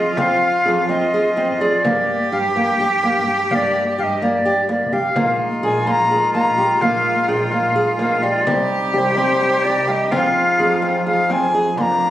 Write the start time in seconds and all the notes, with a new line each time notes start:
Already playing: F4 D#5
0.17 F2 C4 F5, frame drum
0.65 F2 G#4
0.89 C4 D#5, frame drum
1.00 F2
1.14 G#4
1.36 C4, frame drum
1.48 F2
1.60 G#4 D5
1.83 G2 A#3 G4, frame drum
2.32 G2 G4 F5
2.56 A#3 G5, frame drum
2.68 G2
2.80 G4
3.03 A#3 G5, frame drum
3.15 G2
3.27 G4
3.51 G2 A#3 D5 F5, frame drum
3.98 G2 G4 F5
4.04 D#5
4.22 A#3 D5, frame drum
4.34 G2
4.46 G4, frame drum
4.69 A#3 D5, frame drum
4.81 C2
4.92 G4 F5, frame drum
5.16 A#1 G#3 A#3 D#4 F4, frame drum
5.63 A#1 G#4 G#5
5.87 A#3 C6, frame drum
5.91 A#5
5.99 A#1
6.11 G#4
6.33 A#3 A#5, frame drum
6.46 A#1
6.58 G4
6.81 A#1 A#3 F5, frame drum
7.28 A#1 G#4 G5
7.52 A#3 F5, frame drum
7.64 A#1
7.76 G#4
7.99 A#3 F5, frame drum
8.11 A#1
8.23 G4 D5
8.46 C2 C3 G3 C4 G4, frame drum
8.94 C2 G4 D5
8.98 C5
9.16 C4 C5, frame drum
9.29 C2
9.41 G4
9.64 C4 D5, frame drum
9.76 C2
9.87 G4 F5
9.92 D#5
10.11 F2 F3 C4 F4 G#4 G5, frame drum
10.17 F5
10.58 F2 G#4
10.82 C4, frame drum
10.94 F2
11.06 G#4 F5, frame drum
11.30 C4 G#5, frame drum
11.41 F2
11.54 G#4
11.76 F2 A#3 D4 C6, frame drum
11.81 A#5
12.01 frame drum